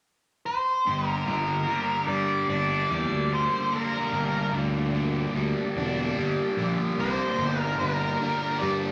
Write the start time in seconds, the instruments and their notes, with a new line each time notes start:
0.46 lead electric guitar C5
0.85 fingered electric bass G1, overdriven electric guitar G2, string machine A#3 D4 G4 D5
1.07 lead electric guitar A#4
1.27 fingered electric bass G1, overdriven electric guitar D3, lead electric guitar A#4
1.67 overdriven electric guitar D3
2.07 fingered electric bass G2, overdriven electric guitar G3, lead electric guitar D5
2.49 fingered electric bass G1, overdriven electric guitar D4, lead electric guitar D5
2.90 fingered electric bass E2, overdriven electric guitar G3
3.10 fingered electric bass D2
3.32 overdriven electric guitar D3, lead electric guitar C5
3.72 overdriven electric guitar A#3, lead electric guitar A#4
4.13 fingered electric bass G1, overdriven electric guitar G2
4.53 fingered electric bass D2, overdriven electric guitar D3
4.94 overdriven electric guitar D3
5.34 fingered electric bass D2, overdriven electric guitar G3
5.76 fingered electric bass E1, overdriven electric guitar D4
6.17 fingered electric bass G1, overdriven electric guitar G3
6.57 fingered electric bass A#1, overdriven electric guitar D3
6.98 fingered electric bass C2, overdriven electric guitar A#3, lead electric guitar C5
7.38 fingered electric bass G1, overdriven electric guitar G2
7.61 lead electric guitar A#4
7.79 fingered electric bass G1, overdriven electric guitar D3, lead electric guitar A#4
8.22 overdriven electric guitar D3
8.58 overdriven electric guitar G3, lead electric guitar D5
8.62 fingered electric bass G2